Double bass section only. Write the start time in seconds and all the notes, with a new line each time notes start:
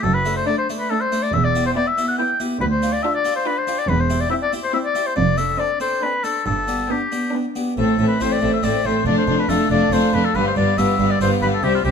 0.04 F#1
1.33 E1
2.61 D2
3.88 E1
5.16 F1
6.46 G1
7.78 A1
7.99 A1
8.21 A1
8.43 A1
8.64 A1
8.85 A1
9.06 F1
9.27 F1
9.49 F1
9.70 F1
9.92 F1
10.14 F1
10.35 G1
10.56 G1
10.78 G1
10.99 G1
11.21 G1
11.42 G1
11.63 C2
11.84 C2